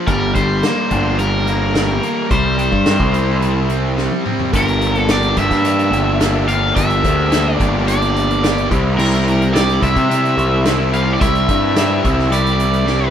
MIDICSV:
0, 0, Header, 1, 5, 480
1, 0, Start_track
1, 0, Tempo, 556586
1, 65, Time_signature, 4, 2, 24, 8
1, 11299, End_track
2, 0, Start_track
2, 0, Title_t, "Overdriven electric guitar"
2, 0, Program_c, 0, 29
2, 65, Note_on_c, 0, 70, 101
2, 288, Note_off_c, 0, 70, 0
2, 303, Note_on_c, 0, 72, 98
2, 1025, Note_off_c, 0, 72, 0
2, 1029, Note_on_c, 0, 70, 97
2, 1995, Note_off_c, 0, 70, 0
2, 1998, Note_on_c, 0, 72, 95
2, 3401, Note_off_c, 0, 72, 0
2, 3938, Note_on_c, 0, 70, 93
2, 4292, Note_off_c, 0, 70, 0
2, 4292, Note_on_c, 0, 69, 93
2, 4408, Note_off_c, 0, 69, 0
2, 4412, Note_on_c, 0, 74, 89
2, 4644, Note_off_c, 0, 74, 0
2, 4648, Note_on_c, 0, 76, 96
2, 5588, Note_off_c, 0, 76, 0
2, 5591, Note_on_c, 0, 77, 99
2, 5826, Note_off_c, 0, 77, 0
2, 5830, Note_on_c, 0, 76, 105
2, 6511, Note_off_c, 0, 76, 0
2, 6511, Note_on_c, 0, 74, 105
2, 6793, Note_off_c, 0, 74, 0
2, 6796, Note_on_c, 0, 74, 90
2, 7478, Note_off_c, 0, 74, 0
2, 7748, Note_on_c, 0, 70, 85
2, 8229, Note_on_c, 0, 74, 91
2, 8242, Note_off_c, 0, 70, 0
2, 8475, Note_off_c, 0, 74, 0
2, 8480, Note_on_c, 0, 76, 105
2, 9397, Note_off_c, 0, 76, 0
2, 9434, Note_on_c, 0, 77, 107
2, 9602, Note_off_c, 0, 77, 0
2, 9606, Note_on_c, 0, 74, 80
2, 9666, Note_off_c, 0, 74, 0
2, 9671, Note_on_c, 0, 76, 108
2, 10627, Note_off_c, 0, 76, 0
2, 10630, Note_on_c, 0, 74, 85
2, 11299, Note_off_c, 0, 74, 0
2, 11299, End_track
3, 0, Start_track
3, 0, Title_t, "Distorted electric guitar"
3, 0, Program_c, 1, 30
3, 68, Note_on_c, 1, 55, 68
3, 303, Note_off_c, 1, 55, 0
3, 306, Note_on_c, 1, 55, 66
3, 543, Note_on_c, 1, 58, 71
3, 779, Note_on_c, 1, 62, 65
3, 1025, Note_off_c, 1, 55, 0
3, 1029, Note_on_c, 1, 55, 65
3, 1260, Note_off_c, 1, 58, 0
3, 1270, Note_on_c, 1, 58, 68
3, 1499, Note_off_c, 1, 55, 0
3, 1503, Note_on_c, 1, 55, 68
3, 1728, Note_off_c, 1, 58, 0
3, 1738, Note_on_c, 1, 58, 74
3, 1978, Note_off_c, 1, 55, 0
3, 1982, Note_on_c, 1, 55, 69
3, 1984, Note_off_c, 1, 58, 0
3, 1985, Note_off_c, 1, 62, 0
3, 2214, Note_off_c, 1, 55, 0
3, 2225, Note_on_c, 1, 55, 75
3, 2467, Note_on_c, 1, 60, 67
3, 2701, Note_on_c, 1, 64, 65
3, 2932, Note_off_c, 1, 55, 0
3, 2942, Note_on_c, 1, 55, 72
3, 3171, Note_off_c, 1, 60, 0
3, 3182, Note_on_c, 1, 60, 72
3, 3416, Note_off_c, 1, 55, 0
3, 3426, Note_on_c, 1, 55, 69
3, 3657, Note_off_c, 1, 60, 0
3, 3668, Note_on_c, 1, 60, 77
3, 3900, Note_off_c, 1, 60, 0
3, 3903, Note_off_c, 1, 64, 0
3, 3903, Note_on_c, 1, 58, 96
3, 3906, Note_on_c, 1, 62, 101
3, 3909, Note_off_c, 1, 55, 0
3, 3912, Note_on_c, 1, 67, 105
3, 4390, Note_off_c, 1, 58, 0
3, 4393, Note_on_c, 1, 58, 82
3, 4394, Note_off_c, 1, 62, 0
3, 4397, Note_off_c, 1, 67, 0
3, 4397, Note_on_c, 1, 62, 87
3, 4401, Note_on_c, 1, 67, 90
3, 4625, Note_off_c, 1, 58, 0
3, 4625, Note_off_c, 1, 62, 0
3, 4629, Note_on_c, 1, 58, 82
3, 4634, Note_off_c, 1, 67, 0
3, 4636, Note_on_c, 1, 62, 88
3, 4637, Note_on_c, 1, 67, 87
3, 4865, Note_off_c, 1, 62, 0
3, 4869, Note_off_c, 1, 58, 0
3, 4872, Note_on_c, 1, 58, 82
3, 4875, Note_on_c, 1, 62, 94
3, 4876, Note_off_c, 1, 67, 0
3, 4879, Note_on_c, 1, 67, 102
3, 5336, Note_off_c, 1, 62, 0
3, 5340, Note_off_c, 1, 58, 0
3, 5344, Note_on_c, 1, 58, 79
3, 5346, Note_on_c, 1, 62, 77
3, 5350, Note_off_c, 1, 67, 0
3, 5354, Note_on_c, 1, 67, 78
3, 5576, Note_off_c, 1, 62, 0
3, 5581, Note_off_c, 1, 58, 0
3, 5584, Note_on_c, 1, 58, 87
3, 5586, Note_on_c, 1, 62, 89
3, 5587, Note_off_c, 1, 67, 0
3, 5590, Note_on_c, 1, 67, 96
3, 5821, Note_off_c, 1, 62, 0
3, 5822, Note_off_c, 1, 58, 0
3, 5825, Note_on_c, 1, 58, 85
3, 5831, Note_on_c, 1, 62, 102
3, 5834, Note_off_c, 1, 67, 0
3, 5837, Note_on_c, 1, 67, 109
3, 6293, Note_off_c, 1, 58, 0
3, 6293, Note_off_c, 1, 62, 0
3, 6297, Note_on_c, 1, 58, 81
3, 6303, Note_on_c, 1, 62, 88
3, 6305, Note_off_c, 1, 67, 0
3, 6308, Note_on_c, 1, 67, 94
3, 6532, Note_off_c, 1, 62, 0
3, 6534, Note_off_c, 1, 58, 0
3, 6538, Note_on_c, 1, 58, 81
3, 6542, Note_on_c, 1, 62, 82
3, 6543, Note_off_c, 1, 67, 0
3, 6547, Note_on_c, 1, 67, 95
3, 6772, Note_off_c, 1, 58, 0
3, 6773, Note_off_c, 1, 62, 0
3, 6775, Note_on_c, 1, 58, 93
3, 6783, Note_off_c, 1, 67, 0
3, 6783, Note_on_c, 1, 62, 94
3, 6787, Note_on_c, 1, 67, 98
3, 7262, Note_off_c, 1, 62, 0
3, 7267, Note_off_c, 1, 58, 0
3, 7270, Note_on_c, 1, 58, 76
3, 7272, Note_on_c, 1, 62, 90
3, 7273, Note_off_c, 1, 67, 0
3, 7277, Note_on_c, 1, 67, 96
3, 7496, Note_off_c, 1, 62, 0
3, 7504, Note_on_c, 1, 55, 102
3, 7506, Note_off_c, 1, 58, 0
3, 7509, Note_off_c, 1, 67, 0
3, 7509, Note_on_c, 1, 60, 100
3, 7512, Note_on_c, 1, 64, 108
3, 7513, Note_on_c, 1, 67, 107
3, 7735, Note_off_c, 1, 64, 0
3, 7737, Note_off_c, 1, 55, 0
3, 7740, Note_on_c, 1, 55, 94
3, 7743, Note_off_c, 1, 60, 0
3, 7745, Note_off_c, 1, 67, 0
3, 7746, Note_on_c, 1, 64, 100
3, 7747, Note_on_c, 1, 60, 95
3, 7748, Note_on_c, 1, 67, 107
3, 8217, Note_off_c, 1, 64, 0
3, 8218, Note_off_c, 1, 55, 0
3, 8222, Note_on_c, 1, 55, 80
3, 8223, Note_off_c, 1, 60, 0
3, 8227, Note_on_c, 1, 60, 88
3, 8228, Note_on_c, 1, 64, 93
3, 8231, Note_off_c, 1, 67, 0
3, 8234, Note_on_c, 1, 67, 94
3, 8447, Note_off_c, 1, 55, 0
3, 8458, Note_off_c, 1, 64, 0
3, 8458, Note_on_c, 1, 55, 71
3, 8462, Note_off_c, 1, 60, 0
3, 8462, Note_off_c, 1, 67, 0
3, 8466, Note_on_c, 1, 60, 89
3, 8469, Note_on_c, 1, 64, 86
3, 8472, Note_on_c, 1, 67, 90
3, 8692, Note_off_c, 1, 55, 0
3, 8701, Note_off_c, 1, 64, 0
3, 8702, Note_on_c, 1, 55, 97
3, 8706, Note_off_c, 1, 60, 0
3, 8706, Note_off_c, 1, 67, 0
3, 8709, Note_on_c, 1, 60, 94
3, 8712, Note_on_c, 1, 64, 101
3, 8717, Note_on_c, 1, 67, 103
3, 9174, Note_off_c, 1, 55, 0
3, 9184, Note_off_c, 1, 60, 0
3, 9184, Note_on_c, 1, 55, 73
3, 9186, Note_off_c, 1, 64, 0
3, 9187, Note_on_c, 1, 60, 78
3, 9188, Note_off_c, 1, 67, 0
3, 9196, Note_on_c, 1, 64, 87
3, 9199, Note_on_c, 1, 67, 82
3, 9413, Note_off_c, 1, 55, 0
3, 9424, Note_off_c, 1, 60, 0
3, 9424, Note_off_c, 1, 64, 0
3, 9424, Note_on_c, 1, 55, 81
3, 9427, Note_off_c, 1, 67, 0
3, 9428, Note_on_c, 1, 60, 92
3, 9434, Note_on_c, 1, 64, 92
3, 9438, Note_on_c, 1, 67, 98
3, 9651, Note_off_c, 1, 55, 0
3, 9661, Note_on_c, 1, 55, 96
3, 9662, Note_off_c, 1, 60, 0
3, 9662, Note_off_c, 1, 64, 0
3, 9662, Note_off_c, 1, 67, 0
3, 9665, Note_on_c, 1, 60, 95
3, 9672, Note_on_c, 1, 64, 111
3, 9672, Note_on_c, 1, 67, 107
3, 10128, Note_off_c, 1, 55, 0
3, 10135, Note_off_c, 1, 64, 0
3, 10138, Note_off_c, 1, 67, 0
3, 10138, Note_on_c, 1, 55, 77
3, 10143, Note_off_c, 1, 60, 0
3, 10146, Note_on_c, 1, 60, 84
3, 10146, Note_on_c, 1, 64, 87
3, 10148, Note_on_c, 1, 67, 96
3, 10368, Note_off_c, 1, 55, 0
3, 10377, Note_off_c, 1, 64, 0
3, 10378, Note_on_c, 1, 55, 75
3, 10379, Note_off_c, 1, 60, 0
3, 10381, Note_off_c, 1, 67, 0
3, 10383, Note_on_c, 1, 60, 94
3, 10387, Note_on_c, 1, 64, 84
3, 10391, Note_on_c, 1, 67, 90
3, 10603, Note_off_c, 1, 55, 0
3, 10612, Note_off_c, 1, 64, 0
3, 10613, Note_on_c, 1, 55, 95
3, 10615, Note_off_c, 1, 60, 0
3, 10617, Note_off_c, 1, 67, 0
3, 10618, Note_on_c, 1, 60, 88
3, 10623, Note_on_c, 1, 64, 93
3, 10627, Note_on_c, 1, 67, 93
3, 11075, Note_off_c, 1, 55, 0
3, 11082, Note_off_c, 1, 60, 0
3, 11083, Note_off_c, 1, 64, 0
3, 11085, Note_on_c, 1, 55, 78
3, 11086, Note_off_c, 1, 67, 0
3, 11086, Note_on_c, 1, 60, 76
3, 11094, Note_on_c, 1, 64, 93
3, 11097, Note_on_c, 1, 67, 91
3, 11299, Note_off_c, 1, 55, 0
3, 11299, Note_off_c, 1, 60, 0
3, 11299, Note_off_c, 1, 64, 0
3, 11299, Note_off_c, 1, 67, 0
3, 11299, End_track
4, 0, Start_track
4, 0, Title_t, "Picked electric bass"
4, 0, Program_c, 2, 34
4, 64, Note_on_c, 2, 31, 92
4, 285, Note_off_c, 2, 31, 0
4, 303, Note_on_c, 2, 31, 84
4, 524, Note_off_c, 2, 31, 0
4, 790, Note_on_c, 2, 31, 95
4, 1716, Note_off_c, 2, 31, 0
4, 1990, Note_on_c, 2, 36, 92
4, 2320, Note_off_c, 2, 36, 0
4, 2344, Note_on_c, 2, 43, 86
4, 2567, Note_off_c, 2, 43, 0
4, 2586, Note_on_c, 2, 36, 102
4, 3514, Note_off_c, 2, 36, 0
4, 3909, Note_on_c, 2, 31, 95
4, 4596, Note_off_c, 2, 31, 0
4, 4633, Note_on_c, 2, 31, 83
4, 4742, Note_off_c, 2, 31, 0
4, 4752, Note_on_c, 2, 43, 86
4, 5081, Note_off_c, 2, 43, 0
4, 5096, Note_on_c, 2, 31, 101
4, 5789, Note_off_c, 2, 31, 0
4, 5833, Note_on_c, 2, 31, 98
4, 6052, Note_off_c, 2, 31, 0
4, 6072, Note_on_c, 2, 38, 97
4, 6516, Note_off_c, 2, 38, 0
4, 6554, Note_on_c, 2, 31, 97
4, 7476, Note_off_c, 2, 31, 0
4, 7510, Note_on_c, 2, 36, 104
4, 7729, Note_off_c, 2, 36, 0
4, 7750, Note_on_c, 2, 36, 101
4, 8434, Note_off_c, 2, 36, 0
4, 8471, Note_on_c, 2, 36, 89
4, 8579, Note_off_c, 2, 36, 0
4, 8593, Note_on_c, 2, 48, 92
4, 8919, Note_off_c, 2, 48, 0
4, 8947, Note_on_c, 2, 36, 90
4, 9631, Note_off_c, 2, 36, 0
4, 9668, Note_on_c, 2, 36, 99
4, 9886, Note_off_c, 2, 36, 0
4, 9908, Note_on_c, 2, 43, 87
4, 10350, Note_off_c, 2, 43, 0
4, 10391, Note_on_c, 2, 36, 95
4, 11299, Note_off_c, 2, 36, 0
4, 11299, End_track
5, 0, Start_track
5, 0, Title_t, "Drums"
5, 63, Note_on_c, 9, 42, 65
5, 65, Note_on_c, 9, 36, 105
5, 149, Note_off_c, 9, 42, 0
5, 151, Note_off_c, 9, 36, 0
5, 304, Note_on_c, 9, 42, 68
5, 306, Note_on_c, 9, 36, 90
5, 390, Note_off_c, 9, 42, 0
5, 392, Note_off_c, 9, 36, 0
5, 544, Note_on_c, 9, 42, 62
5, 546, Note_on_c, 9, 38, 100
5, 631, Note_off_c, 9, 42, 0
5, 632, Note_off_c, 9, 38, 0
5, 783, Note_on_c, 9, 42, 65
5, 787, Note_on_c, 9, 36, 87
5, 869, Note_off_c, 9, 42, 0
5, 873, Note_off_c, 9, 36, 0
5, 1024, Note_on_c, 9, 42, 66
5, 1110, Note_off_c, 9, 42, 0
5, 1269, Note_on_c, 9, 42, 65
5, 1355, Note_off_c, 9, 42, 0
5, 1511, Note_on_c, 9, 42, 70
5, 1513, Note_on_c, 9, 38, 108
5, 1597, Note_off_c, 9, 42, 0
5, 1599, Note_off_c, 9, 38, 0
5, 1752, Note_on_c, 9, 42, 65
5, 1838, Note_off_c, 9, 42, 0
5, 1990, Note_on_c, 9, 36, 114
5, 1992, Note_on_c, 9, 42, 68
5, 2076, Note_off_c, 9, 36, 0
5, 2078, Note_off_c, 9, 42, 0
5, 2231, Note_on_c, 9, 42, 70
5, 2317, Note_off_c, 9, 42, 0
5, 2349, Note_on_c, 9, 36, 80
5, 2435, Note_off_c, 9, 36, 0
5, 2465, Note_on_c, 9, 42, 72
5, 2466, Note_on_c, 9, 38, 109
5, 2551, Note_off_c, 9, 42, 0
5, 2553, Note_off_c, 9, 38, 0
5, 2588, Note_on_c, 9, 36, 88
5, 2675, Note_off_c, 9, 36, 0
5, 2708, Note_on_c, 9, 42, 72
5, 2794, Note_off_c, 9, 42, 0
5, 2952, Note_on_c, 9, 42, 70
5, 3038, Note_off_c, 9, 42, 0
5, 3187, Note_on_c, 9, 42, 65
5, 3273, Note_off_c, 9, 42, 0
5, 3431, Note_on_c, 9, 38, 62
5, 3518, Note_off_c, 9, 38, 0
5, 3548, Note_on_c, 9, 48, 65
5, 3635, Note_off_c, 9, 48, 0
5, 3674, Note_on_c, 9, 45, 84
5, 3760, Note_off_c, 9, 45, 0
5, 3789, Note_on_c, 9, 43, 90
5, 3876, Note_off_c, 9, 43, 0
5, 3910, Note_on_c, 9, 36, 106
5, 3910, Note_on_c, 9, 42, 97
5, 3996, Note_off_c, 9, 42, 0
5, 3997, Note_off_c, 9, 36, 0
5, 4036, Note_on_c, 9, 42, 46
5, 4122, Note_off_c, 9, 42, 0
5, 4152, Note_on_c, 9, 42, 70
5, 4238, Note_off_c, 9, 42, 0
5, 4269, Note_on_c, 9, 42, 43
5, 4356, Note_off_c, 9, 42, 0
5, 4386, Note_on_c, 9, 42, 98
5, 4387, Note_on_c, 9, 38, 109
5, 4472, Note_off_c, 9, 42, 0
5, 4474, Note_off_c, 9, 38, 0
5, 4508, Note_on_c, 9, 42, 42
5, 4595, Note_off_c, 9, 42, 0
5, 4628, Note_on_c, 9, 42, 74
5, 4631, Note_on_c, 9, 36, 89
5, 4714, Note_off_c, 9, 42, 0
5, 4717, Note_off_c, 9, 36, 0
5, 4751, Note_on_c, 9, 36, 84
5, 4752, Note_on_c, 9, 42, 44
5, 4754, Note_on_c, 9, 38, 34
5, 4837, Note_off_c, 9, 36, 0
5, 4838, Note_off_c, 9, 42, 0
5, 4840, Note_off_c, 9, 38, 0
5, 4869, Note_on_c, 9, 42, 98
5, 4956, Note_off_c, 9, 42, 0
5, 4995, Note_on_c, 9, 42, 46
5, 5081, Note_off_c, 9, 42, 0
5, 5115, Note_on_c, 9, 42, 69
5, 5201, Note_off_c, 9, 42, 0
5, 5352, Note_on_c, 9, 42, 102
5, 5354, Note_on_c, 9, 38, 110
5, 5438, Note_off_c, 9, 42, 0
5, 5440, Note_off_c, 9, 38, 0
5, 5591, Note_on_c, 9, 42, 79
5, 5677, Note_off_c, 9, 42, 0
5, 5833, Note_on_c, 9, 42, 107
5, 5834, Note_on_c, 9, 36, 106
5, 5920, Note_off_c, 9, 36, 0
5, 5920, Note_off_c, 9, 42, 0
5, 5952, Note_on_c, 9, 42, 44
5, 6038, Note_off_c, 9, 42, 0
5, 6075, Note_on_c, 9, 36, 92
5, 6075, Note_on_c, 9, 42, 86
5, 6161, Note_off_c, 9, 36, 0
5, 6162, Note_off_c, 9, 42, 0
5, 6311, Note_on_c, 9, 42, 108
5, 6312, Note_on_c, 9, 38, 104
5, 6397, Note_off_c, 9, 42, 0
5, 6398, Note_off_c, 9, 38, 0
5, 6556, Note_on_c, 9, 36, 90
5, 6559, Note_on_c, 9, 42, 78
5, 6642, Note_off_c, 9, 36, 0
5, 6645, Note_off_c, 9, 42, 0
5, 6795, Note_on_c, 9, 42, 111
5, 6881, Note_off_c, 9, 42, 0
5, 6916, Note_on_c, 9, 42, 53
5, 7002, Note_off_c, 9, 42, 0
5, 7040, Note_on_c, 9, 42, 75
5, 7126, Note_off_c, 9, 42, 0
5, 7162, Note_on_c, 9, 42, 48
5, 7248, Note_off_c, 9, 42, 0
5, 7278, Note_on_c, 9, 42, 98
5, 7280, Note_on_c, 9, 38, 107
5, 7364, Note_off_c, 9, 42, 0
5, 7366, Note_off_c, 9, 38, 0
5, 7400, Note_on_c, 9, 42, 46
5, 7486, Note_off_c, 9, 42, 0
5, 7515, Note_on_c, 9, 36, 105
5, 7519, Note_on_c, 9, 42, 73
5, 7602, Note_off_c, 9, 36, 0
5, 7605, Note_off_c, 9, 42, 0
5, 7756, Note_on_c, 9, 49, 104
5, 7842, Note_off_c, 9, 49, 0
5, 7881, Note_on_c, 9, 42, 42
5, 7968, Note_off_c, 9, 42, 0
5, 8002, Note_on_c, 9, 42, 73
5, 8088, Note_off_c, 9, 42, 0
5, 8122, Note_on_c, 9, 42, 43
5, 8208, Note_off_c, 9, 42, 0
5, 8240, Note_on_c, 9, 42, 97
5, 8242, Note_on_c, 9, 38, 111
5, 8326, Note_off_c, 9, 42, 0
5, 8328, Note_off_c, 9, 38, 0
5, 8358, Note_on_c, 9, 42, 45
5, 8445, Note_off_c, 9, 42, 0
5, 8473, Note_on_c, 9, 36, 88
5, 8475, Note_on_c, 9, 42, 72
5, 8559, Note_off_c, 9, 36, 0
5, 8562, Note_off_c, 9, 42, 0
5, 8593, Note_on_c, 9, 36, 86
5, 8594, Note_on_c, 9, 42, 44
5, 8679, Note_off_c, 9, 36, 0
5, 8680, Note_off_c, 9, 42, 0
5, 8721, Note_on_c, 9, 42, 99
5, 8807, Note_off_c, 9, 42, 0
5, 8841, Note_on_c, 9, 42, 45
5, 8927, Note_off_c, 9, 42, 0
5, 8956, Note_on_c, 9, 42, 61
5, 9042, Note_off_c, 9, 42, 0
5, 9189, Note_on_c, 9, 42, 102
5, 9190, Note_on_c, 9, 38, 115
5, 9275, Note_off_c, 9, 42, 0
5, 9276, Note_off_c, 9, 38, 0
5, 9431, Note_on_c, 9, 42, 77
5, 9517, Note_off_c, 9, 42, 0
5, 9669, Note_on_c, 9, 42, 101
5, 9670, Note_on_c, 9, 36, 118
5, 9755, Note_off_c, 9, 42, 0
5, 9756, Note_off_c, 9, 36, 0
5, 9789, Note_on_c, 9, 42, 44
5, 9875, Note_off_c, 9, 42, 0
5, 9906, Note_on_c, 9, 42, 78
5, 9907, Note_on_c, 9, 36, 92
5, 9992, Note_off_c, 9, 42, 0
5, 9993, Note_off_c, 9, 36, 0
5, 10144, Note_on_c, 9, 42, 108
5, 10146, Note_on_c, 9, 38, 117
5, 10230, Note_off_c, 9, 42, 0
5, 10232, Note_off_c, 9, 38, 0
5, 10389, Note_on_c, 9, 36, 93
5, 10390, Note_on_c, 9, 42, 77
5, 10475, Note_off_c, 9, 36, 0
5, 10476, Note_off_c, 9, 42, 0
5, 10511, Note_on_c, 9, 38, 31
5, 10597, Note_off_c, 9, 38, 0
5, 10626, Note_on_c, 9, 42, 110
5, 10712, Note_off_c, 9, 42, 0
5, 10750, Note_on_c, 9, 42, 54
5, 10836, Note_off_c, 9, 42, 0
5, 10863, Note_on_c, 9, 42, 68
5, 10949, Note_off_c, 9, 42, 0
5, 10983, Note_on_c, 9, 42, 51
5, 11069, Note_off_c, 9, 42, 0
5, 11098, Note_on_c, 9, 38, 67
5, 11185, Note_off_c, 9, 38, 0
5, 11299, End_track
0, 0, End_of_file